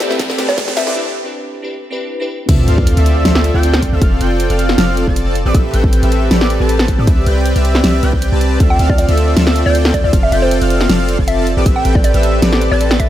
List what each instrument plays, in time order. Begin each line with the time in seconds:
Already playing: supersaw synth C4 G4 A4 B4 E5, riser
0.00 snare, closed hi-hat
0.09 synth keys A3 C4 E4 G4 B4, snare
0.19 supersaw synth C4 G4 A4 B4 D5, kick, snare, closed hi-hat
0.30 snare
0.37 synth keys A3 C4 E4 G4 C5, snare, closed hi-hat
0.49 supersaw synth C4 G4 A4 B4 A5, synth pluck D5, snare
0.58 kick, snare, closed hi-hat
0.67 synth keys A3 C4 E4 G4 B4, snare
0.77 synth pluck E5, snare, closed hi-hat
0.87 supersaw synth C4 G4 A4 B4 D5, snare
0.95 synth keys C4 D4 E4 G4 B4
1.24 synth keys C4 D4 E4 G4 B4
1.62 synth keys C4 D4 E4 G4 B4
1.90 synth keys C4 D4 E4 G4 B4
2.20 synth keys C4 D4 E4 G4 B4
2.29 synth keys C4 D4 E4 B4
2.49 808-style bass D2, supersaw synth C4 F4 A4 D5 E5, digital synth lead E6, kick, closed hi-hat, crash, sub drop
2.68 808-style bass D2, supersaw synth C4 F4 A4 D5 F5, digital synth lead F6, closed hi-hat
2.78 kick
2.87 closed hi-hat
2.97 808-style bass D2, supersaw synth C4 F4 A4 D5 E5, digital synth lead E6, closed hi-hat
3.06 closed hi-hat
3.25 808-style bass D2, supersaw synth C4 F4 A4 D5 E5, digital synth lead E6, snare, closed hi-hat
3.35 snare
3.44 closed hi-hat
3.54 808-style bass D2, supersaw synth C4 F4 A4 D5 G5, digital synth lead G6
3.63 closed hi-hat
3.74 snare
3.82 kick, closed hi-hat
3.93 808-style bass D2, supersaw synth C4 F4 A4 D5 E5, digital synth lead E6
4.02 808-style bass F1, supersaw synth C4 F4 A4 D5 F5, digital synth lead F6, kick, closed hi-hat
4.21 808-style bass F1, supersaw synth C4 F4 A4 D5 G5, digital synth lead G6, closed hi-hat
4.40 closed hi-hat
4.50 808-style bass F1, supersaw synth C4 F4 A4 D5 F5, digital synth lead F6, closed hi-hat
4.59 closed hi-hat
4.69 snare
4.78 808-style bass F1, supersaw synth C4 F4 A4 D5 F5, digital synth lead F6, snare, closed hi-hat
4.97 closed hi-hat
5.07 808-style bass F1, supersaw synth C4 F4 A4 D5 A5, digital synth lead A6, kick
5.16 closed hi-hat
5.35 closed hi-hat
5.46 808-style bass A1, supersaw synth C4 G4 A4 B4 D5, digital synth lead D6
5.54 808-style bass A1, supersaw synth C4 G4 A4 B4 E5, digital synth lead E6, kick, closed hi-hat
5.74 808-style bass A1, supersaw synth C4 G4 A4 B4 G5, digital synth lead G6, closed hi-hat
5.84 kick
5.93 closed hi-hat
6.03 808-style bass A1, supersaw synth C4 G4 A4 B4 E5, digital synth lead E6, closed hi-hat
6.12 closed hi-hat
6.31 808-style bass A1, supersaw synth C4 G4 A4 B4 D5, digital synth lead D6, snare, closed hi-hat
6.41 snare
6.50 closed hi-hat
6.60 808-style bass A1, supersaw synth C4 G4 A4 B4 A5, digital synth lead A6
6.69 closed hi-hat
6.79 snare
6.88 kick, closed hi-hat
6.98 808-style bass A2, supersaw synth C4 G4 A4 B4 D5, digital synth lead D6
7.07 808-style bass C2, supersaw synth C4 G4 B4 D5 E5, digital synth lead E6, kick, closed hi-hat
7.26 808-style bass C2, supersaw synth C4 G4 B4 D5 G5, digital synth lead G6, closed hi-hat
7.46 closed hi-hat
7.56 808-style bass C2, supersaw synth C4 G4 B4 D5 E5, digital synth lead E6, closed hi-hat
7.65 closed hi-hat
7.75 snare
7.84 808-style bass C2, supersaw synth C4 G4 B4 D5 E5, digital synth lead E6, snare, closed hi-hat
8.03 808-style bass C2, supersaw synth C4 G4 B4 D5 G5, digital synth lead G6, closed hi-hat
8.13 kick
8.22 closed hi-hat
8.32 808-style bass C2, supersaw synth C4 G4 B4 D5 A5, digital synth lead A6
8.41 closed hi-hat
8.60 808-style bass D2, supersaw synth C4 F4 A4 D5 E5, digital synth lead E6, kick, closed hi-hat
8.70 synth pluck G5
8.79 808-style bass D2, supersaw synth C4 F4 A4 D5 F5, digital synth lead F6, closed hi-hat
8.89 synth pluck D5, kick
8.98 synth pluck D5, closed hi-hat
9.09 808-style bass D2, supersaw synth C4 F4 A4 D5 E5, digital synth lead E6, closed hi-hat
9.17 closed hi-hat
9.37 808-style bass D2, supersaw synth C4 F4 A4 D5 E5, digital synth lead E6, snare, closed hi-hat
9.47 snare
9.56 closed hi-hat
9.66 808-style bass D2, supersaw synth C4 F4 A4 D5 G5, synth pluck D5, digital synth lead G6
9.75 closed hi-hat
9.85 snare
9.94 synth pluck D5, kick, closed hi-hat
10.04 808-style bass D2, supersaw synth C4 F4 A4 D5 E5, synth pluck D5, digital synth lead E6
10.13 808-style bass F1, supersaw synth C4 F4 A4 D5 F5, digital synth lead F6, kick, closed hi-hat
10.23 synth pluck E5
10.32 808-style bass F1, supersaw synth C4 F4 A4 D5 G5, synth pluck E5, digital synth lead G6, closed hi-hat
10.42 synth pluck C5
10.51 closed hi-hat
10.61 808-style bass F1, supersaw synth C4 F4 A4 D5 F5, digital synth lead F6, closed hi-hat
10.70 closed hi-hat
10.81 snare
10.89 808-style bass F1, supersaw synth C4 F4 A4 D5 F5, digital synth lead F6, snare, closed hi-hat
11.09 closed hi-hat
11.19 808-style bass F1, supersaw synth C4 F4 A4 D5 A5, digital synth lead A6, kick
11.28 synth pluck E5, closed hi-hat
11.47 closed hi-hat
11.57 808-style bass A1, supersaw synth C4 G4 A4 B4 D5, digital synth lead D6
11.66 808-style bass A1, supersaw synth C4 G4 A4 B4 E5, digital synth lead E6, kick, closed hi-hat
11.76 synth pluck G5
11.85 808-style bass A1, supersaw synth C4 G4 A4 B4 G5, digital synth lead G6, closed hi-hat
11.95 synth pluck D5, kick
12.04 synth pluck D5, closed hi-hat
12.14 808-style bass A1, supersaw synth C4 G4 A4 B4 E5, digital synth lead E6, closed hi-hat
12.23 closed hi-hat
12.42 808-style bass A1, supersaw synth C4 G4 A4 B4 D5, digital synth lead D6, snare, closed hi-hat
12.53 snare
12.62 closed hi-hat
12.71 808-style bass A1, supersaw synth C4 G4 A4 B4 A5, synth pluck D5, digital synth lead A6
12.81 closed hi-hat
12.91 snare
13.00 synth pluck E5, kick, closed hi-hat